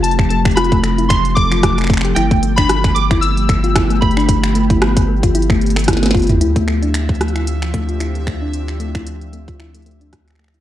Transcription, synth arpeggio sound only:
X:1
M:4/4
L:1/16
Q:"Swing 16ths" 1/4=113
K:Ddor
V:1 name="Synth arpeggio sound"
z2 A, G F A, A, E z2 A, F z2 A, G | E A, A, D z2 A, E z2 A, F E A, A, D | z2 A, E z2 A, F E A, z A, E A, F E | E A, A, D z2 A, E z2 A, F E A, A, D |
z2 A, E z2 A, F E A, A, D z2 A, E |]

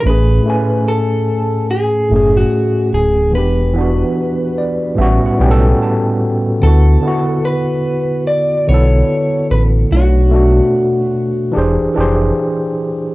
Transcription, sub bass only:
X:1
M:4/4
L:1/16
Q:"Swing 16ths" 1/4=73
K:A
V:1 name="Sub bass" clef=bass
A,,,2 z8 F,,,2 z2 D,,,2 | E,,,4 z4 A,,, B,,, B,,,2 z4 | D,,2 z8 B,,,2 z2 A,,,2 | B,,,4 z4 E,,, =F,,, F,,,2 z4 |]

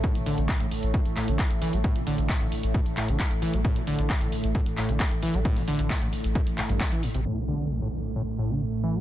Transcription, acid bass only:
X:1
M:4/4
L:1/16
Q:1/4=133
K:C
V:1 name="Acid bass" clef=bass
A,, B,, D,2 A,, A,, z2 A,, z A,, D, A,, z E, G, | A,, B,, D,2 A,, A,, z2 A,, z A,, D, A,, z E, G, | A,, B,, D,2 A,, A,, z2 A,, z A,, D, A,, z E, G, | A,, B,, D,2 A,, A,, z2 A,, z A,, G,, A, E, A,, C, |
A,, B,, D,2 A,, A,, z2 A,, z A,, D, A,, z E, G, |]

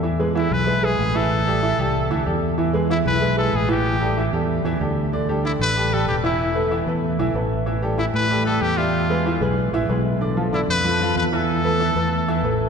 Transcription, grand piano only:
X:1
M:4/4
L:1/8
Q:1/4=189
K:Ephr
V:1 name="Grand piano"
[E,Ee] [^G,^GB] [E,Ee]2 [G,GB] [G,GB]2 [E,Ee]- | [E,Ee] [G,GA] [E,Ee] [G,GA]2 [E,Ee] [G,GA]2 | [E,Ee] [^G,^GB] [E,Ee]2 [G,GB] [G,GB]2 [E,Ee]- | [E,Ee] [G,GA] [E,Ee] [G,GA]2 [E,Ee] [G,GA]2 |
[D,Dd] [G,GA] [D,Dd]2 [G,GA] [G,GA]2 [E,Ee]- | [E,Ee] [A,AB] [E,Ee] [A,AB]2 [E,Ee] [A,AB]2 | [E,Ee] [G,GA] [E,Ee]2 [G,GA] [G,GA]2 [G,Ge]- | [G,Ge] [^G,^GB] [E,Ee] [G,GB]2 [E,Ee] [G,GB]2 |
[D,Dd] [F,FA] [D,Dd]2 [F,FA] [F,FA]2 [E,Ee]- | [E,Ee] [A,AB] [E,Ee] [A,AB]2 [E,Ee] [A,AB]2 |]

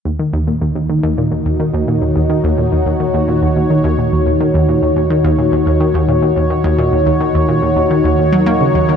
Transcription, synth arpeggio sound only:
X:1
M:4/4
L:1/16
Q:1/4=107
K:Ebm
V:1 name="Synth arpeggio sound" clef=bass
E,, E, E,, B,, E,, E,, E, E,, B,, E,, E,, E, E,, B,, E,, E,, | E, E,, B,, E,, E,, E, E,, B,, E,, E,, E, E,, B,, E,, E,, E, | E,, B,, E,, E,, E, E,, B,, E,, E,, E, E,, B,, E,, E,, E, E,, | B,, E,, E,, E, E,, B,, E,, E,, E, E,, E,, G, B, D, E,, E, |]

